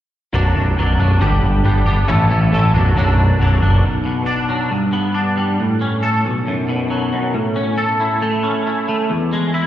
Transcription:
0.33 picked electric bass B0, clean electric guitar B1 F#2 B2 F#3 D4
0.55 picked electric bass B0, clean electric guitar B2 F#3 D4
0.77 picked electric bass B0, clean electric guitar F#2 B2 F#3 D4
0.99 picked electric bass B0, clean electric guitar B2 F#3 D4
1.20 picked electric bass G1, clean electric guitar G2 D3 G3 B3 D4 G4
1.43 picked electric bass G1
1.64 picked electric bass G1, clean electric guitar G3 B3 D4 G4
1.85 picked electric bass G1, clean electric guitar G3 B3 D4 G4
2.08 picked electric bass A1, clean electric guitar A2 E3 A3 C#4 E4 A4
2.29 picked electric bass A1, clean electric guitar A3 C#4 E4 A4
2.52 picked electric bass A1, clean electric guitar A3 C#4 E4 A4
2.74 picked electric bass B0, clean electric guitar B1 F#2 B2 F#3 D4
2.96 picked electric bass B0, clean electric guitar B1 F#2 B2 F#3 D4
3.40 picked electric bass B0, clean electric guitar F#2 B2 F#3 D4
3.62 picked electric bass F#1, clean electric guitar B2 F#3 D4
3.83 clean electric guitar B1
4.05 clean electric guitar B2
4.26 clean electric guitar D4
4.49 clean electric guitar F#3
4.71 clean electric guitar G2
4.93 clean electric guitar B3
5.14 clean electric guitar D4
5.37 clean electric guitar G3
5.60 clean electric guitar A2
5.81 clean electric guitar C#4
6.03 clean electric guitar A4
6.26 clean electric guitar B1
6.47 clean electric guitar F#2
6.69 clean electric guitar B2
6.90 clean electric guitar F#3
7.13 clean electric guitar F#2
7.34 clean electric guitar A2
7.56 clean electric guitar C#4
7.78 clean electric guitar A4
8.00 clean electric guitar E4
8.22 clean electric guitar A3
8.43 clean electric guitar C#4
8.67 clean electric guitar E4
8.88 clean electric guitar A3
9.10 clean electric guitar E2
9.33 clean electric guitar G#3
9.54 clean electric guitar E4

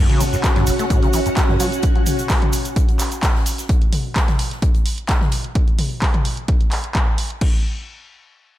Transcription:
Already playing: string machine C#4 F#4 F#5
0.09 acid bass C#3, closed hi-hat
0.20 acid bass B2, closed hi-hat, open hi-hat, mid tom, cabasa
0.33 acid bass F#2, cabasa
0.44 kick, snare, clap, closed hi-hat, cabasa
0.56 acid bass G2, snare, closed hi-hat, mid tom
0.67 acid bass F#1, closed hi-hat, open hi-hat, cabasa
0.79 acid bass A3, snare, closed hi-hat, cabasa
0.90 acid bass A2, kick, closed hi-hat, cabasa
1.03 acid bass C#3, closed hi-hat
1.13 acid bass E3, closed hi-hat, open hi-hat, cabasa
1.26 acid bass F#2, closed hi-hat, cabasa
1.36 acid bass F#2, kick, snare, clap, closed hi-hat, cabasa
1.49 acid bass G2, snare, mid tom
1.60 acid bass F#3, closed hi-hat, open hi-hat, cabasa
1.72 closed hi-hat, cabasa
1.83 kick, closed hi-hat, cabasa
1.96 closed hi-hat
2.06 closed hi-hat, open hi-hat, mid tom, cabasa
2.19 closed hi-hat, cabasa
2.29 kick, snare, clap, closed hi-hat, open hi-hat, cabasa
2.42 closed hi-hat, mid tom
2.53 closed hi-hat, open hi-hat, cabasa
2.65 closed hi-hat, cabasa
2.76 kick, closed hi-hat, cabasa
2.89 closed hi-hat
2.99 clap, closed hi-hat, open hi-hat, cabasa
3.12 closed hi-hat, cabasa
3.22 kick, snare, clap, closed hi-hat, open hi-hat, cabasa
3.35 snare
3.46 closed hi-hat, open hi-hat, cabasa
3.58 snare, closed hi-hat, cabasa
3.69 kick, closed hi-hat
3.82 closed hi-hat
3.92 closed hi-hat, open hi-hat, mid tom
4.16 kick, snare, clap, closed hi-hat
4.28 snare, closed hi-hat, mid tom
4.39 closed hi-hat, open hi-hat
4.51 snare, closed hi-hat
4.62 kick, closed hi-hat
4.75 closed hi-hat
4.86 closed hi-hat, open hi-hat
4.98 closed hi-hat
5.08 kick, snare, clap, closed hi-hat
5.21 snare, mid tom
5.31 closed hi-hat, open hi-hat
5.44 closed hi-hat
5.55 kick, closed hi-hat
5.68 closed hi-hat
5.79 open hi-hat, mid tom
6.02 kick, clap, open hi-hat
6.14 closed hi-hat, mid tom
6.25 open hi-hat
6.37 closed hi-hat
6.48 kick, closed hi-hat
6.61 closed hi-hat
6.72 clap, open hi-hat
6.84 closed hi-hat
6.95 kick, clap, closed hi-hat
7.18 open hi-hat
7.30 closed hi-hat
7.41 kick, crash

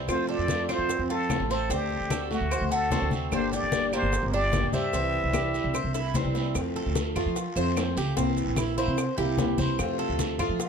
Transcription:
0.07 upright bass F2, steel-string acoustic guitar C3 F3 A3 C4 F4, cuban tres F4, muted trumpet C5, high bongo, high conga, long guiro, claves, maracas
0.28 nylon-string guitar F4, cuban tres A4, muted trumpet D5, high conga
0.38 upright bass F2
0.48 steel-string acoustic guitar C3 F3 A3 C4 F4, high bongo, high conga, short guiro, maracas
0.68 steel-string acoustic guitar A3 C4 F4, cuban tres C4, muted trumpet C5, high conga, short guiro, claves, maracas
0.78 upright bass F2
0.88 muted steel-string acoustic guitar stroke, high bongo, high conga, long guiro, maracas
0.99 upright bass F2
1.10 nylon-string guitar C4, cuban tres F4, muted trumpet A4, high conga
1.29 steel-string acoustic guitar C3 F3 A3 C4 F4, high bongo, low bongo, high conga, short guiro, claves, maracas
1.40 upright bass A1
1.50 steel-string acoustic guitar A3 C4 F4, muted trumpet A4, cuban tres C5, short guiro, maracas
1.70 upright bass D2, steel-string acoustic guitar D3 A3 C4, cuban tres C4, muted trumpet G4, high bongo, high conga, long guiro, maracas
1.90 high bongo, high conga
2.00 upright bass D2
2.10 steel-string acoustic guitar D3 A3 C4 F#4, cuban tres A4, high bongo, high conga, short guiro, claves, maracas
2.31 steel-string acoustic guitar A3 C4 F#4, muted trumpet F#4, high bongo, high conga, short guiro, maracas
2.41 upright bass D2
2.51 cuban tres C5, muted steel-string acoustic guitar stroke, high bongo, high conga, long guiro, claves, maracas
2.61 upright bass D2
2.71 nylon-string guitar C4, cuban tres F#4, muted trumpet A4, high bongo, high conga, maracas
2.91 steel-string acoustic guitar D3 A3 C4 F#4, cuban tres C4, high bongo, low bongo, high conga, short guiro, maracas
3.02 upright bass D2
3.11 steel-string acoustic guitar A3 C4 F#4, high conga, short guiro, maracas
3.31 upright bass G1, steel-string acoustic guitar D3 G3 A#3 D4 G4, cuban tres D4, muted trumpet C5, high bongo, high conga, long guiro, claves, maracas
3.52 cuban tres G4, nylon-string guitar G4, muted trumpet D5, high conga, maracas
3.62 upright bass G1
3.72 steel-string acoustic guitar D3 G3 A#3 D4 G4, high bongo, high conga, short guiro, maracas
3.92 steel-string acoustic guitar A#3 D4 G4, cuban tres A#3, muted trumpet C5, high conga, short guiro, claves, maracas
4.03 upright bass G1
4.12 muted steel-string acoustic guitar stroke, high bongo, high conga, long guiro, maracas
4.23 upright bass G1
4.32 cuban tres D4, nylon-string guitar G4, muted trumpet D5, high conga
4.52 steel-string acoustic guitar D3 G3 A#3 D4 G4, high bongo, low bongo, high conga, short guiro, claves, maracas
4.63 upright bass G2
4.73 steel-string acoustic guitar A#3 D4 G4, cuban tres C5, muted trumpet E5, high conga, short guiro, maracas
4.93 upright bass C2, steel-string acoustic guitar C3 E3 G3 C4 E4, cuban tres C4, high bongo, high conga, long guiro, maracas
5.14 high bongo, high conga
5.23 upright bass C2
5.33 steel-string acoustic guitar C3 E3 G3 C4 E4, cuban tres G4, high bongo, high conga, short guiro, claves, maracas
5.54 steel-string acoustic guitar G3 C4 E4, high bongo, high conga, short guiro, maracas
5.64 upright bass C2
5.73 cuban tres C5, muted steel-string acoustic guitar stroke, high bongo, high conga, long guiro, claves, maracas
5.84 upright bass C2
5.94 cuban tres E4, high bongo, high conga, maracas
6.14 steel-string acoustic guitar C3 E3 G3 C4 E4, cuban tres C4, low bongo, high conga, short guiro, maracas
6.25 upright bass C2
6.34 steel-string acoustic guitar G3 C4 E4, low bongo, short guiro, maracas
6.55 upright bass F2, steel-string acoustic guitar C3 F3 A3 C4 F4, high bongo, high conga, long guiro, claves, maracas
6.75 cuban tres A4, high bongo, high conga
6.86 upright bass D2
6.95 high bongo, high conga, short guiro, maracas
7.16 steel-string acoustic guitar F3 A3 C4 F4, cuban tres F4, low conga, short guiro, claves, maracas
7.26 upright bass F3
7.36 muted steel-string acoustic guitar stroke, high bongo, high conga, long guiro, maracas
7.56 upright bass F2, steel-string acoustic guitar F3 A3 C4 F4, cuban tres C5, high bongo, high conga, maracas
7.76 steel-string acoustic guitar F3 A3 C4 F4, high bongo, low bongo, high conga, short guiro, claves, maracas
7.97 upright bass C#2, cuban tres G4, high bongo, short guiro, maracas
8.16 upright bass C2, steel-string acoustic guitar C3 E3 A#3 C4 E4, cuban tres C4, high bongo, high conga, long guiro, maracas
8.36 high conga, maracas
8.47 upright bass A#1
8.56 cuban tres E4, high bongo, high conga, short guiro, claves, maracas
8.77 steel-string acoustic guitar E3 A#3 C4 E4, cuban tres C5, high bongo, high conga, short guiro, maracas
8.88 upright bass C3
8.97 muted steel-string acoustic guitar stroke, high bongo, high conga, long guiro, claves, maracas
9.17 upright bass C2, steel-string acoustic guitar E3 A#3 C4 E4, cuban tres G4, high bongo, high conga
9.38 steel-string acoustic guitar E3 A#3 C4 E4, high bongo, low bongo, high conga, short guiro, maracas
9.58 upright bass C2, cuban tres C5, high bongo, high conga, short guiro, maracas
9.79 upright bass F2, steel-string acoustic guitar C3 F3 A3 C4 F4, high bongo, high conga, long guiro, claves, maracas
9.99 cuban tres A4, high bongo, high conga
10.09 upright bass D2
10.19 high bongo, high conga, short guiro, maracas
10.39 steel-string acoustic guitar F3 A3 C4 F4, cuban tres F4, low conga, short guiro, claves, maracas
10.49 upright bass F3
10.59 muted steel-string acoustic guitar stroke, high bongo, high conga, long guiro, maracas

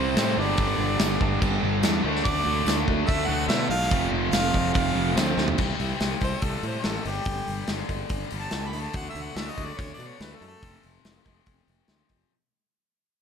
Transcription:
Already playing: fingered electric bass C2, overdriven electric guitar C3 G3 C4 E4, distorted electric guitar C3 G3 C4, harmonica C5
0.16 fingered electric bass A2, overdriven electric guitar C3 G3 C4 E4, snare, tambourine, crash
0.36 fingered electric bass G1, distorted electric guitar G2 D3 G3, overdriven electric guitar G2 D3 G3 B3 D4
0.40 harmonica D5
0.57 fingered electric bass G1, overdriven electric guitar G2 D3 G3 B3 D4, kick, crash
0.78 fingered electric bass G1, overdriven electric guitar G2 D3 G3 B3 D4
0.99 fingered electric bass G1, overdriven electric guitar G2 D3 G3 B3 D4, snare, tambourine, crash
1.20 fingered electric bass G1, overdriven electric guitar G2 D3 G3 B3 D4, kick
1.41 fingered electric bass G1, overdriven electric guitar G2 D3 G3 B3 D4, kick, crash
1.62 fingered electric bass G1, overdriven electric guitar G2 D3 G3 B3 D4
1.83 fingered electric bass E2, overdriven electric guitar G2 D3 G3 B3 D4, snare, tambourine, crash
2.03 fingered electric bass D2, distorted electric guitar D3 A3 D4, overdriven electric guitar D3 F#3 A3 D4
2.16 snare
2.25 fingered electric bass D2, overdriven electric guitar D3 F#3 A3 D4, harmonica D5, kick, crash
2.46 fingered electric bass D2, overdriven electric guitar D3 F#3 A3 D4
2.66 fingered electric bass D2, overdriven electric guitar D3 F#3 A3 D4, snare, tambourine, crash
2.87 fingered electric bass D2, overdriven electric guitar D3 F#3 A3 D4, kick
3.07 fingered electric bass D2, overdriven electric guitar D3 F#3 A3 D4, harmonica E5, kick, crash
3.27 fingered electric bass D2, overdriven electric guitar D3 F#3 A3 D4, harmonica F#5
3.48 fingered electric bass B2, overdriven electric guitar D3 F#3 A3 D4, harmonica E5, snare, tambourine, crash
3.69 fingered electric bass B1, overdriven electric guitar D3 F#3 A3 D4, harmonica F5
3.82 snare
3.90 fingered electric bass F1, overdriven electric guitar F2 C3 F3 A3 C4, distorted electric guitar F2 C3 F3, kick, crash
4.12 fingered electric bass F1, overdriven electric guitar F2 C3 F3 A3 C4
4.31 fingered electric bass F1, overdriven electric guitar F2 C3 F3 A3 C4, harmonica F5, snare, tambourine, crash
4.52 fingered electric bass F1, overdriven electric guitar F2 C3 F3 A3 C4, kick
4.73 fingered electric bass F1, overdriven electric guitar F2 C3 F3 A3 C4, harmonica F5, kick, crash
4.95 fingered electric bass F1, overdriven electric guitar F2 C3 F3 A3 C4
5.16 fingered electric bass D2, overdriven electric guitar F2 C3 F3 A3 C4, harmonica C5, snare, tambourine, crash
5.36 fingered electric bass D2, overdriven electric guitar F2 C3 F3 A3 C4, snare
5.48 floor tom
5.58 fingered electric bass C2, distorted electric guitar C3 G3 C4, kick, crash
5.80 fingered electric bass C2, open hi-hat
6.01 fingered electric bass C2, snare, open hi-hat
6.20 fingered electric bass C2, distorted electric guitar C3 G3 C4, harmonica C5, kick, open hi-hat
6.42 fingered electric bass C2, harmonica A4, kick, open hi-hat
6.63 fingered electric bass A2, harmonica C5, open hi-hat
6.83 fingered electric bass A1, distorted electric guitar C3 G3 C4, harmonica A4, snare, open hi-hat
7.04 fingered electric bass G1, distorted electric guitar G2 D3 G3, harmonica G4, open hi-hat
7.25 fingered electric bass G1, kick, open hi-hat
7.48 fingered electric bass G1, open hi-hat
7.68 fingered electric bass G1, distorted electric guitar G2 D3 G3, snare, open hi-hat
7.89 fingered electric bass G1, kick, open hi-hat
8.10 fingered electric bass G1, kick, open hi-hat
8.30 fingered electric bass G1, distorted electric guitar G2 D3 G3, open hi-hat
8.40 harmonica A5
8.51 fingered electric bass C#2, snare, open hi-hat
8.68 harmonica B5
8.73 fingered electric bass D2, distorted electric guitar D3 A3 D4, open hi-hat
8.82 harmonica A5
8.94 fingered electric bass D2, harmonica F#5, kick, open hi-hat
9.10 harmonica E5
9.15 fingered electric bass D2, open hi-hat
9.23 harmonica F#5
9.35 fingered electric bass D2, distorted electric guitar D3 A3 D4, harmonica E5, snare, open hi-hat
9.50 harmonica D#5
9.58 fingered electric bass D2, kick, open hi-hat
9.65 harmonica D5
9.78 fingered electric bass D2, harmonica C#5, kick, open hi-hat
9.94 harmonica D5
9.98 fingered electric bass B2, distorted electric guitar A3 D4, open hi-hat
10.02 distorted electric guitar D3
10.07 harmonica C#5
10.20 fingered electric bass D2, harmonica B4, snare, open hi-hat
10.36 harmonica A4
10.41 fingered electric bass F#2, open hi-hat
10.48 harmonica A4
10.61 fingered electric bass F1, distorted electric guitar F2 C3 F3, kick, open hi-hat
10.83 fingered electric bass F1, open hi-hat
11.05 fingered electric bass F1, snare, open hi-hat
11.24 fingered electric bass F1, distorted electric guitar F2 C3 F3, kick, open hi-hat
11.46 fingered electric bass F1, kick, open hi-hat
11.68 fingered electric bass F1, open hi-hat
11.87 fingered electric bass D2, distorted electric guitar F2 C3 F3, snare, open hi-hat
12.09 fingered electric bass F1, kick, open hi-hat

